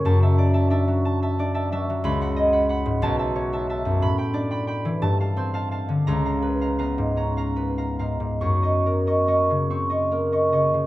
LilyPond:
<<
  \new Staff \with { instrumentName = "Harp" } { \time 6/8 \key des \major \tempo 4. = 59 << { a''2. | ces'''4. a''4. | b''4. a''4. | bes''2. |
des'''2. | } \\ { ges16 <e'' a''>16 d''16 <e'' a''>16 <e'' a''>16 fis16 a''16 <e'' a''>16 d''16 <e'' a''>16 <e'' a''>16 fis16~ | fis16 <ges'' ces'''>16 ees''16 <ges'' ces'''>16 <ges'' ces'''>16 aes,16 r16 <fes'' a''>16 des''16 <fes'' a''>16 <fes'' a''>16 ges,16 | r16 <g'' b''>16 d''16 <g'' b''>16 <g'' b''>16 e16 r16 <f'' a''>16 c''16 <f'' a''>16 <f'' a''>16 d16 | r16 <f'' bes''>16 ces''16 <f'' bes''>16 <f'' bes''>16 aes,16 bes''16 <f'' bes''>16 ces''16 <f'' bes''>16 <f'' bes''>16 aes,16 |
r16 <ees'' des'''>16 bes'16 <ees'' des'''>16 <ees'' des'''>16 des16 des'''16 <ees'' des'''>16 bes'16 <ees'' des'''>16 <ees'' des'''>16 des16 | } >> }
  \new Staff \with { instrumentName = "Harp" } { \clef bass \time 6/8 \key des \major fis,4 d'4 d'8 fis8 | des,4. ces,4. | a,8 d'4 g,8 c'4 | des,4 ces'8 des'8 ces'8 aes,8 |
ges,4 bes8 c'8 bes8 des8 | }
>>